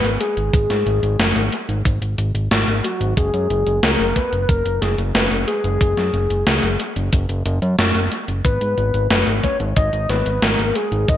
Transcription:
Already playing: B4
0.04 G#1, closed hi-hat
0.20 G#4, closed hi-hat
0.37 G#1, closed hi-hat
0.54 G#1, kick, closed hi-hat
0.70 G#2, snare, closed hi-hat
0.86 G#1, closed hi-hat
1.03 G#1, closed hi-hat
1.19 F#1, snare, closed hi-hat
1.36 G#1, closed hi-hat
1.52 closed hi-hat
1.69 G#1, closed hi-hat
1.85 G#1, kick, closed hi-hat
2.02 G#1, closed hi-hat
2.18 G#1, closed hi-hat
2.35 G#1, closed hi-hat
2.51 G#1, snare, closed hi-hat
2.68 G#1, closed hi-hat
2.84 F#4, closed hi-hat
3.01 G#1, closed hi-hat
3.17 F#1 G#4, kick, closed hi-hat
3.34 F#2, closed hi-hat
3.50 F#1, closed hi-hat
3.67 F#1, closed hi-hat
3.83 C#2 A#4, snare, closed hi-hat
4.00 F#1, closed hi-hat
4.16 B4, kick, closed hi-hat
4.33 F#1, closed hi-hat
4.42 B4
4.49 F#1 A#4, kick, closed hi-hat
4.66 F#1, closed hi-hat
4.81 F#1 G#4, snare, closed hi-hat
4.98 F#1, closed hi-hat
5.14 F#1 B4, snare, closed hi-hat
5.31 F#1, closed hi-hat
5.47 G#4, closed hi-hat
5.64 F#1, closed hi-hat
5.81 F#1, kick, closed hi-hat
5.97 F#2, snare, closed hi-hat
6.14 F#1, closed hi-hat
6.30 F#1, closed hi-hat
6.47 C#2, snare, closed hi-hat
6.63 F#1, closed hi-hat
6.80 closed hi-hat
6.96 F#1, closed hi-hat
7.13 F#1, kick, closed hi-hat
7.29 F#1, closed hi-hat
7.46 F#1, closed hi-hat
7.62 F#2, closed hi-hat
7.79 F#1, snare, closed hi-hat
7.95 F#1, closed hi-hat
8.12 closed hi-hat
8.28 F#1, closed hi-hat
8.45 G#1 B4, kick, closed hi-hat
8.61 G#2, closed hi-hat
8.78 G#1, closed hi-hat
8.94 G#1, closed hi-hat
9.11 F#1 B4, snare, closed hi-hat
9.27 G#1, closed hi-hat
9.43 C#5, kick, closed hi-hat
9.60 G#1, closed hi-hat
9.76 G#1 D#5, kick, closed hi-hat
9.93 G#1, closed hi-hat
10.09 G#1 B4, snare, closed hi-hat
10.26 G#1, closed hi-hat
10.42 G#1 A#4, snare, closed hi-hat
10.59 G#1, closed hi-hat
10.75 G#4, closed hi-hat
10.92 G#1, closed hi-hat
11.08 G#1 D#5, kick, closed hi-hat

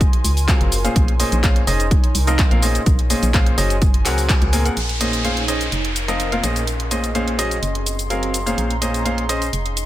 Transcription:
Already playing: D#4 C#5 G#5 C6
0.01 F4, kick, closed hi-hat, shaker
0.13 A#4, closed hi-hat
0.24 C#2, open hi-hat, shaker
0.37 open hi-hat, shaker
0.48 F#3 C4 G#4 A#4 F5, kick, clap, closed hi-hat, shaker
0.61 F#1, closed hi-hat
0.72 open hi-hat, shaker
0.84 A#2 C#4 G#4 C5 F5, closed hi-hat, shaker
0.96 A#1 D#4 C#5, kick, closed hi-hat, shaker
1.08 closed hi-hat
1.20 A#2 C#4 G#4 C5 D#5, open hi-hat, shaker
1.32 A#1, closed hi-hat, shaker
1.43 A#2 C#4 G#4 C5 F5, kick, clap, closed hi-hat, shaker
1.56 closed hi-hat
1.67 F1 C#4 G#4 C5 D#5, open hi-hat, shaker
1.80 closed hi-hat, shaker
1.91 A#4, kick, closed hi-hat, shaker
2.04 closed hi-hat
2.15 C2, open hi-hat, shaker
2.23 F3 C4 F4 A#4 D#5 F5, closed hi-hat
2.28 shaker
2.39 kick, clap, closed hi-hat, shaker
2.51 A#1 A#2 C4 F4 A#4 F5, closed hi-hat
2.63 A#2 C#4 G#4 C5 D#5, open hi-hat, shaker
2.75 closed hi-hat, shaker
2.81 C#5
2.86 A#1, kick, closed hi-hat, shaker
2.99 G#5, closed hi-hat
3.10 A#2 C#4 G#4 C5 D#5, open hi-hat, shaker
3.23 A#1, closed hi-hat, shaker
3.34 A#2 C#4 G#4 C5 F5, kick, clap, closed hi-hat, shaker
3.46 closed hi-hat
3.58 F#1 F#3 C#4 G#4 C5 D#5, open hi-hat, shaker
3.70 closed hi-hat, shaker
3.82 kick, closed hi-hat, shaker
3.94 closed hi-hat
3.98 A#4
4.05 C#2 F#3 C4 G#4 A#4 F#5, clap, open hi-hat, shaker
4.18 open hi-hat, shaker
4.29 kick, clap, closed hi-hat, shaker
4.42 C#2, closed hi-hat
4.53 A#2 C4 G#4 A#4 G#5, open hi-hat, shaker
4.65 A#2 C4 G#4 A#4 F#5, closed hi-hat, shaker
4.77 A#1 D#4 C6, closed hi-hat, downlifter, shaker
4.89 closed hi-hat
5.01 A#2 C#4 G#4 C5 C#5 D#5, closed hi-hat, shaker
5.13 closed hi-hat, shaker
5.24 A#2 C#4 G#4 C5 F5, closed hi-hat, shaker
5.37 closed hi-hat
5.48 C#4 G#4 C5 D#5, closed hi-hat, shaker
5.61 closed hi-hat, shaker
5.72 F1, closed hi-hat, shaker
5.82 A#4 F5, closed hi-hat
5.96 closed hi-hat, shaker
6.08 F3 C4 F4 A#4 D#5, closed hi-hat, shaker
6.20 closed hi-hat, shaker
6.32 A#2 C4 F4 A#4 F5, closed hi-hat
6.43 A#1 A#2 C#4 G#4 C5 D#5, closed hi-hat, shaker
6.54 G#4, closed hi-hat, shaker
6.67 D#5, closed hi-hat, shaker
6.80 closed hi-hat
6.91 A#2 C#4 G#4 C5 D#5, closed hi-hat, shaker
7.04 closed hi-hat, shaker
7.15 A#2 C#4 G#4 C5 F5, closed hi-hat, shaker
7.28 closed hi-hat
7.39 F#3 C#4 G#4 C5 D#5, closed hi-hat, shaker
7.51 closed hi-hat, shaker
7.62 F#1 C4, closed hi-hat, shaker
7.75 closed hi-hat
7.86 closed hi-hat, shaker
7.99 closed hi-hat, shaker
8.05 F5 A#5
8.10 F#3 C4 G#4 A#4 F5, closed hi-hat, shaker
8.23 closed hi-hat
8.34 closed hi-hat, shaker
8.46 A#2 C#4 G#4 C5 F5, closed hi-hat, shaker
8.58 A#1 C#4, closed hi-hat, shaker
8.70 closed hi-hat
8.82 A#2 C#4 G#4 C5 D#5, closed hi-hat, shaker
8.94 D#5 C6, closed hi-hat, shaker
9.05 A#2 C#4 G#4 C5 F5, closed hi-hat, shaker
9.18 closed hi-hat
9.29 C#4 G#4 C5 D#5, closed hi-hat, shaker
9.42 closed hi-hat, shaker
9.53 F1 D#4, closed hi-hat, shaker
9.66 closed hi-hat
9.72 A#4
9.77 closed hi-hat, shaker

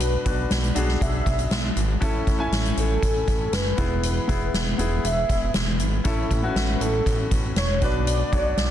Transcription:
Already playing: B1 B2 D4 F#4 B4
0.00 B4, closed hi-hat
0.25 B1 D4 F#4 B4, kick, closed hi-hat
0.51 B1, snare, closed hi-hat
0.64 closed hi-hat
0.75 B1 D4 F#4 G#4, closed hi-hat
0.88 snare
1.01 B1 E5, kick, closed hi-hat
1.26 B1, kick, closed hi-hat
1.39 closed hi-hat
1.51 B1, snare, closed hi-hat
1.76 G#1, closed hi-hat
2.01 A1 A2 C#4 E4 A4, kick, closed hi-hat
2.27 A1, kick, closed hi-hat
2.38 C#4 E4 G#5
2.52 A1, snare, closed hi-hat
2.65 closed hi-hat
2.77 A1 A4, closed hi-hat
3.03 A1, kick, closed hi-hat
3.28 A1, kick, closed hi-hat
3.52 F#1 B4, snare, closed hi-hat
3.77 E1 E3 B3 E4 G#4, kick, closed hi-hat
4.03 B4, closed hi-hat
4.27 E1 B3 E4 G#4, kick, closed hi-hat
4.54 E1, snare, closed hi-hat
4.78 E1 B3 E4 G#4, closed hi-hat
5.04 E1 E5, closed hi-hat
5.29 E1, kick, closed hi-hat
5.54 E1, snare, closed hi-hat
5.79 G#1, closed hi-hat
6.04 A1 A2 C#4 E4 A4, kick, closed hi-hat
6.31 A1, kick, closed hi-hat
6.42 B3 E4 F#4
6.48 C#4
6.55 A1, snare, closed hi-hat
6.75 B4
6.80 A1 A4, closed hi-hat
7.06 A1, kick, closed hi-hat
7.31 A1, kick, closed hi-hat
7.56 E1 C#5, snare, closed hi-hat
7.81 B1 B2 D4 F#4 B4 D5, kick, closed hi-hat
8.07 closed hi-hat
8.32 B1 D4 F#4 C#5, kick, closed hi-hat
8.39 D5
8.57 B1, snare, closed hi-hat

